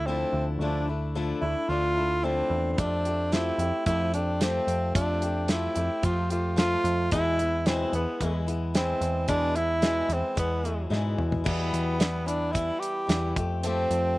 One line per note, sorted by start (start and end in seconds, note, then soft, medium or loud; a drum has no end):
0.00 0.23 D2 medium
0.06 0.59 D3 medium
0.06 0.61 F3 medium
0.06 0.62 A3 medium
0.06 0.46 C4 medium
0.06 0.61 D4 medium
0.06 0.61 E4 medium
0.33 0.57 D2 medium
0.59 1.32 D2 medium
0.59 0.88 D3 medium
0.59 0.88 F3 medium
0.59 0.88 A3 medium
0.59 0.88 D4 medium
0.59 0.87 D4 medium
0.59 0.86 E4 medium
0.87 1.15 A3 soft
0.87 1.15 D4 soft
0.87 1.15 E4 soft
1.15 1.42 D3 medium
1.15 1.42 F3 medium
1.15 1.43 A3 medium
1.15 1.42 D4 medium
1.15 1.40 E4 loud
1.41 1.54 D2 medium
1.41 1.69 A3 soft
1.41 1.70 D4 soft
1.41 1.70 E4 medium
1.41 1.69 E4 soft
1.68 2.41 D2 medium
1.68 1.96 F3 medium
1.68 1.97 A3 medium
1.68 1.97 D4 medium
1.68 1.95 E4 medium
1.68 2.26 F4 loud
1.96 2.23 A3 soft
1.96 2.24 D4 soft
1.96 2.23 E4 soft
2.23 2.78 D3 medium
2.23 2.78 F3 medium
2.23 2.78 A3 medium
2.23 2.72 C4 medium
2.23 2.79 D4 medium
2.23 2.79 E4 medium
2.50 2.74 E2 medium
2.72 2.80 C4 medium
2.78 3.50 F2 loud
2.78 3.05 F3 medium
2.78 3.05 A3 medium
2.78 3.06 C4 medium
2.78 3.35 D4 medium
2.78 3.05 G4 medium
2.78 kick loud
2.78 closed hi-hat medium
3.05 3.31 A3 soft
3.05 3.33 C4 soft
3.05 3.33 G4 soft
3.05 closed hi-hat medium
3.32 3.59 F3 medium
3.32 3.59 A3 medium
3.32 3.59 C4 medium
3.32 3.85 E4 medium
3.32 3.58 G4 medium
3.32 snare medium
3.32 closed hi-hat medium
3.58 3.71 F2 medium
3.58 3.86 A3 soft
3.58 3.87 C4 soft
3.58 3.86 G4 soft
3.58 closed hi-hat medium
3.86 4.58 F2 medium
3.86 4.13 F3 medium
3.86 4.14 A3 medium
3.86 4.14 C4 medium
3.86 4.11 E4 medium
3.86 4.13 G4 medium
3.86 kick medium
3.86 closed hi-hat medium
4.14 4.40 A3 soft
4.14 4.41 C4 soft
4.14 4.43 D4 medium
4.14 4.41 G4 soft
4.14 closed hi-hat medium
4.41 4.94 F3 medium
4.41 4.94 A3 medium
4.41 4.95 C4 loud
4.41 4.94 C4 medium
4.41 4.95 G4 medium
4.41 snare loud
4.41 closed hi-hat medium
4.67 4.91 F2 medium
4.67 closed hi-hat medium
4.95 5.67 F2 loud
4.95 5.22 F3 medium
4.95 5.22 A3 medium
4.95 5.22 C4 medium
4.95 5.52 D4 medium
4.95 5.21 G4 medium
4.95 kick loud
4.95 closed hi-hat medium
5.22 5.47 A3 soft
5.22 5.48 C4 soft
5.22 5.49 G4 soft
5.22 closed hi-hat medium
5.48 5.76 F3 medium
5.48 5.76 A3 medium
5.48 5.75 C4 medium
5.48 6.06 E4 medium
5.48 5.73 G4 medium
5.48 snare loud
5.48 closed hi-hat medium
5.74 5.88 F2 medium
5.74 6.03 A3 soft
5.74 6.03 C4 soft
5.74 6.02 G4 medium
5.74 closed hi-hat medium
6.02 6.75 F2 medium
6.02 6.30 F3 soft
6.02 6.30 A3 medium
6.02 6.29 C4 medium
6.02 6.31 F4 medium
6.02 6.28 G4 medium
6.02 kick medium
6.02 closed hi-hat medium
6.29 6.57 A3 soft
6.29 6.57 C4 soft
6.29 6.56 F4 medium
6.29 6.57 G4 soft
6.29 closed hi-hat medium
6.56 7.11 F3 medium
6.56 7.12 A3 medium
6.56 7.12 C4 medium
6.56 7.09 F4 loud
6.56 7.12 G4 medium
6.56 snare loud
6.56 closed hi-hat medium
6.84 7.08 F2 medium
6.84 closed hi-hat medium
7.11 7.84 E2 medium
7.11 7.39 E2 medium
7.11 7.39 B2 medium
7.11 7.39 E3 medium
7.11 7.40 G#3 medium
7.11 7.39 B3 medium
7.11 7.68 E4 loud
7.11 7.38 E4 medium
7.11 kick medium
7.11 closed hi-hat medium
7.39 7.66 E3 soft
7.39 7.67 G#3 soft
7.39 7.67 B3 soft
7.39 7.66 E4 medium
7.39 closed hi-hat medium
7.66 7.94 E2 medium
7.66 7.94 B2 medium
7.66 7.94 E3 medium
7.66 7.94 G#3 medium
7.66 7.94 B3 medium
7.66 7.93 C4 medium
7.66 7.93 E4 medium
7.66 snare medium
7.66 closed hi-hat medium
7.93 8.05 E2 medium
7.93 8.21 G#3 soft
7.93 8.45 B3 medium
7.93 8.21 B3 soft
7.93 8.21 E4 soft
7.93 closed hi-hat medium
7.97 8.20 E3 soft
8.21 8.93 E2 loud
8.21 8.48 E3 medium
8.21 8.47 G#3 medium
8.21 8.47 B3 medium
8.21 8.45 E4 medium
8.21 kick medium
8.21 closed hi-hat medium
8.46 8.73 E3 soft
8.46 8.74 G#3 soft
8.46 8.75 B3 soft
8.46 8.74 E4 soft
8.46 closed hi-hat medium
8.74 9.26 E2 medium
8.74 9.28 E3 medium
8.74 9.28 G#3 medium
8.74 9.25 C4 medium
8.74 9.29 E4 medium
8.74 snare loud
8.74 closed hi-hat medium
9.01 9.25 E2 medium
9.01 closed hi-hat medium
9.28 9.55 E2 medium
9.28 10.01 E2 medium
9.28 9.56 B2 medium
9.28 9.56 E3 medium
9.28 9.55 G#3 medium
9.28 9.55 B3 medium
9.28 9.58 D4 loud
9.28 9.54 E4 medium
9.28 kick medium
9.28 closed hi-hat medium
9.55 9.81 E3 soft
9.55 9.82 G#3 soft
9.55 9.82 B3 soft
9.55 9.82 E4 medium
9.55 10.15 E4 loud
9.55 closed hi-hat medium
9.82 10.10 E2 medium
9.82 10.10 B2 medium
9.82 10.10 E3 medium
9.82 10.10 G#3 medium
9.82 10.08 B3 medium
9.82 10.07 E4 medium
9.82 snare medium
9.82 closed hi-hat medium
10.09 10.21 E2 medium
10.09 10.34 E3 soft
10.09 10.35 G#3 soft
10.09 10.36 B3 soft
10.09 10.37 E4 soft
10.09 closed hi-hat medium
10.13 10.38 C4 medium
10.35 10.85 E2 medium
10.35 10.63 E3 medium
10.35 10.64 G#3 medium
10.35 10.63 B3 medium
10.35 10.89 B3 medium
10.35 10.62 E4 medium
10.35 kick medium
10.35 closed hi-hat medium
10.64 10.89 E3 soft
10.64 10.90 G#3 soft
10.64 10.91 B3 soft
10.64 10.91 E4 soft
10.64 closed hi-hat medium
10.90 11.43 E2 medium
10.90 11.15 G#2 medium
10.90 11.43 B2 medium
10.90 11.45 E3 medium
10.90 11.45 G#3 medium
10.90 11.45 B3 medium
10.90 11.45 E4 medium
10.90 snare medium
11.18 11.43 E2 medium
11.18 mid tom medium
11.32 floor tom medium
11.44 11.99 E2 medium
11.44 11.70 E2 medium
11.44 12.00 B2 medium
11.44 11.98 E3 medium
11.44 12.00 G3 medium
11.44 12.00 B3 medium
11.44 12.28 B3 medium
11.44 12.00 E4 medium
11.44 kick loud
11.44 crash medium
11.73 12.70 E2 medium
11.73 closed hi-hat medium
11.99 12.27 E3 medium
11.99 12.27 G3 medium
11.99 12.26 B3 medium
11.99 12.25 E4 medium
11.99 snare loud
11.99 closed hi-hat medium
12.26 12.52 E3 soft
12.26 12.53 G3 soft
12.26 12.53 B3 soft
12.26 12.54 D4 medium
12.26 12.54 E4 medium
12.26 closed hi-hat medium
12.52 13.06 E3 medium
12.52 13.08 G3 medium
12.52 13.08 B3 medium
12.52 12.81 E4 medium
12.52 13.09 E4 medium
12.52 kick medium
12.52 closed hi-hat medium
12.79 13.35 G4 medium
12.79 closed hi-hat medium
13.07 13.33 E2 medium
13.07 13.35 E3 medium
13.07 13.36 G3 medium
13.07 13.36 B3 medium
13.07 13.36 E4 medium
13.07 snare medium
13.07 closed hi-hat medium
13.36 13.85 F2 medium
13.36 13.64 A3 soft
13.36 13.64 C4 soft
13.36 13.64 G4 medium
13.36 kick medium
13.36 closed hi-hat medium
13.63 14.16 F3 medium
13.63 14.17 A3 medium
13.63 14.18 C4 medium
13.63 14.18 G4 medium
13.63 closed hi-hat medium
13.90 14.18 F2 medium
13.90 closed hi-hat medium